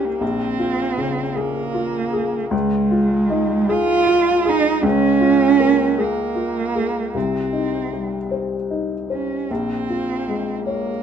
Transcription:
Already playing: upright piano C2 C4 D#4 G4
0.04 cello A#3
0.21 upright piano A#1, cello C4
0.59 upright piano F4
0.98 upright piano C#3
1.35 cello A#3, upright piano G#4
1.74 upright piano F4
2.13 upright piano G#4
2.51 upright piano C#2, cello G#3
2.91 upright piano F4
3.30 upright piano D#4
3.69 cello F4, upright piano G#4
4.07 upright piano F4
4.45 cello D#4, upright piano G#4
4.83 upright piano C#2, cello C#4
5.20 upright piano F4
5.60 upright piano A#3
5.98 cello A#3, upright piano G#4
6.35 upright piano F4
6.75 upright piano G#4
7.14 upright piano C2, cello C4
7.53 upright piano D#4
7.93 upright piano G3
8.31 upright piano C5
8.71 upright piano D#4
9.10 cello C#4, upright piano C5
9.51 upright piano A#1, cello C4
9.89 upright piano F4
10.28 upright piano G#3
10.66 cello A#3, upright piano C#5

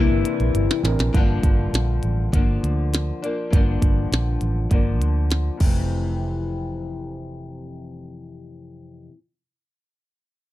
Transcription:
Already playing: nylon-string guitar C3 E3 A#3, upright piano E3 D4 A#4, clean electric guitar E4, ambient pad A#4 D5 E5 C6
0.00 nylon-string guitar D4
0.10 fingered electric bass G1
0.25 closed hi-hat
0.40 fingered electric bass A#1, closed hi-hat
0.54 fingered electric bass G1, closed hi-hat
0.71 snare
0.83 fingered electric bass A1, upright piano E3 C4 D4 A#4, snare, closed hi-hat
0.99 fingered electric bass A#1, snare, closed hi-hat
1.13 fingered electric bass G1, nylon-string guitar G2 D3 F3, kick, closed hi-hat
1.17 nylon-string guitar A#3 D4
1.43 fingered electric bass G1, kick, closed hi-hat
1.73 fingered electric bass A#1, snare, closed hi-hat
2.03 fingered electric bass A1, closed hi-hat
2.32 fingered electric bass G1, nylon-string guitar D3 F3 A#3, kick, closed hi-hat
2.36 nylon-string guitar D4
2.63 fingered electric bass D2, closed hi-hat
2.94 snare, closed hi-hat
3.22 nylon-string guitar F3 A#3 D4, closed hi-hat
3.50 fingered electric bass G1, nylon-string guitar G2 D3 F3, kick, closed hi-hat
3.55 nylon-string guitar A#3 D4
3.82 fingered electric bass G1, kick, closed hi-hat
4.12 fingered electric bass A#1, snare, closed hi-hat
4.41 fingered electric bass A1, closed hi-hat
4.70 fingered electric bass G1, nylon-string guitar D3 F3 A#3, kick, closed hi-hat
4.74 nylon-string guitar D4
5.01 fingered electric bass D2, closed hi-hat
5.31 snare, closed hi-hat
5.57 fingered electric bass F1, nylon-string guitar F2 C3, kick, crash
5.63 nylon-string guitar E3 A3
5.67 nylon-string guitar C4

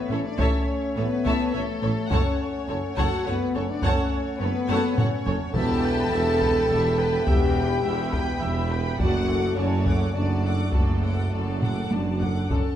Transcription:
Already playing: woodwind section A3 A4 C#5 E5, french horn section B3, violin section B4
0.09 tuba A1, double bass section A1, cello section A2, french horn section C#4, viola section A4 C#5, violin section A4 C#5
0.25 french horn section D4, violin section D5
0.38 tuba A1, double bass section A1, cello section A2, french horn section C#4, viola section A4 C#5, violin section C#5 E5 A5, taiko
0.96 tuba A1, double bass section A1, cello section A2, french horn section B3, violin section A4 B4 C#5, viola section A4 C#5
1.24 double bass section A1, tuba A1, cello section A2, viola section A4 C#5, violin section E5 A5, taiko
1.52 double bass section A1, tuba A1, cello section A2, french horn section A3, viola section A4 C#5, violin section A4 C#5 E5
1.82 tuba A1, double bass section A1, cello section A2, violin section A4 C#5, viola section A4 C#5
2.10 double bass section F#1, tuba F#1, cello section F#2, woodwind section A3 A4 C#5 F#5, french horn section C#4, viola section A4 C#5, violin section C#5 F#5 A5, taiko
2.68 tuba F#1, double bass section F#1, cello section F#2, violin section A4 C#5, viola section A4 C#5
2.96 tuba F#1, double bass section F#1, cello section F#2, french horn section F#4, viola section A4 C#5, violin section F#5 A5, taiko
3.26 tuba F#1, double bass section F#1, cello section F#2, french horn section B3, viola section A4 C#5, violin section B4 C#5 F#5
3.54 double bass section F#1, tuba F#1, cello section F#2, french horn section C#4, viola section A4 C#5, violin section A4 C#5
3.70 french horn section D4, violin section D5
3.83 double bass section F#1, tuba F#1, cello section F#2, french horn section C#4, viola section A4 C#5, violin section C#5 F#5 A5, taiko
4.40 double bass section F#1, tuba F#1, cello section F#2, french horn section B3, viola section A4 C#5, violin section A4 B4 C#5
4.69 double bass section F#1, tuba F#1, cello section F#2, viola section A4 C#5, violin section F#5 A5, taiko high
4.96 double bass section F#1, tuba F#1, cello section F#2, french horn section C#4, viola section A4 C#5, violin section C#5 F#5, taiko low-mid
5.26 tuba F#1, double bass section F#1, cello section F#2, violin section A4 C#5, viola section A4 C#5, taiko low
5.53 double bass section E1, tuba E1, cello section E2, woodwind section B3 G4 B4 E5, viola section G4 E5, french horn section A4, violin section G5 A5 B5, taiko
5.84 viola section B4 G5, violin section G5 B5
6.12 double bass section E1, tuba E1, cello section E2, viola section G4 E5, violin section G5 B5
6.41 viola section B4 G5, violin section G5 B5, taiko
6.69 double bass section E1, tuba E1, cello section E2, viola section G4 E5, violin section G5 B5
6.98 viola section B4 G5, violin section G5 B5
7.26 double bass section E1, tuba E1, cello section E2, french horn section G4, viola section G4 E5, violin section G5 B5, taiko
7.56 viola section B4 G5, violin section G5 B5
7.84 double bass section E1, tuba E1, cello section E2, viola section G4 E5, violin section G5 B5
8.12 french horn section G4, viola section B4 G5, violin section G5 B5, taiko
8.41 double bass section E1, tuba E1, cello section E2, viola section G4 E5, violin section G5 B5
8.70 viola section B4 G5, violin section G5 B5
8.99 double bass section F#1, tuba F#1, cello section F#2, woodwind section A3 F#4 A4 F#5, viola section F#4 D5, french horn section F#4, violin section F#5 A5, taiko
9.27 viola section A4 F#5, violin section F#5 D6
9.56 double bass section F#1, tuba F#1, cello section F#2, french horn section C#4, viola section F#4 D5, violin section C#5 A5
9.85 viola section A4 F#5, violin section F#5 D6, taiko
10.14 double bass section F#1, tuba F#1, cello section F#2, french horn section D4, viola section F#4 D5, violin section D5 A5
10.43 viola section A4 F#5, violin section F#5 D6
10.72 double bass section F#1, tuba F#1, cello section F#2, french horn section A3, viola section F#4 D5, violin section A4 A5, taiko
11.02 viola section A4 F#5, violin section F#5 D6
11.32 double bass section F#1, tuba F#1, cello section F#2, viola section F#4 D5, violin section A5
11.61 viola section A4 F#5, violin section F#5 D6, taiko low-mid
11.90 double bass section F#1, tuba F#1, cello section F#2, french horn section D4, viola section F#4 D5, violin section A5, taiko high
12.20 viola section A4 F#5, violin section F#5 D6, taiko low
12.49 double bass section F#1, cello section F#2, french horn section C#4, viola section A4, violin section C#5 A5, taiko

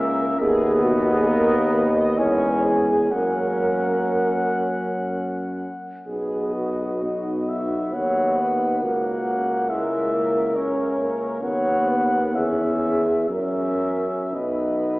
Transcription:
Already playing: tuba C#2, euphonium C#4, french horn section A#4
0.00 trombone A#3, flugelhorn E5
0.40 tuba D#2, trombone B3, euphonium B3, french horn section G#4, flugelhorn D#5
0.83 french horn section F#4
1.07 french horn section G#4
1.27 euphonium A#3, french horn section A#4
1.71 french horn section B4
1.96 french horn section D#5
2.17 tuba E2, euphonium G#3, trombone C#4, french horn section C#5, flugelhorn G#5
2.65 french horn section G#4
3.11 tuba F#2, euphonium A#3, trombone C#4, french horn section A#4, flugelhorn F#5
6.07 tuba B1, trombone B3, euphonium B3, french horn section G#4, flugelhorn D#5
6.54 french horn section F#4
7.03 trombone B3, euphonium D#4, flugelhorn D#5
7.49 flugelhorn E5
7.93 tuba D#2, euphonium D#4, french horn section C#5, flugelhorn F#5
8.37 french horn section B4
8.80 tuba C#2, trombone A#3, euphonium F#4, french horn section A#4, flugelhorn F#5
9.69 trombone G#3, euphonium E4, flugelhorn E5
10.13 trombone A#3
10.56 trombone C#4, euphonium C#4, flugelhorn C#5
10.99 euphonium A#3
11.42 tuba D#2, trombone B3, euphonium B3, french horn section C#5, flugelhorn F#5
11.88 french horn section B4
12.12 french horn section A#4
12.34 tuba E2, trombone C#4, french horn section G#4, flugelhorn E5
13.27 tuba F#2, trombone C#4, euphonium C#4, french horn section A#4, flugelhorn E5
14.33 tuba B1, trombone B3, euphonium D#4, french horn section B4, flugelhorn D#5

